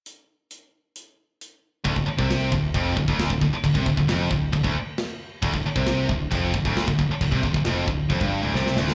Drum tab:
CC |----------------|x---x---x---x---|x---x---x---x---|x---x---x---x---|
HH |x---x---x---x---|----------------|----------------|----------------|
SD |----------------|----o-------o---|----o-------o---|----o-------o---|
BD |----------------|oo-o--o-o-oo-oo-|oooo--o-oo------|oo-o--o-o-oo-oo-|

CC |x---x---x-------|
HH |----------------|
SD |----o-------oooo|
BD |oooo--o-oo------|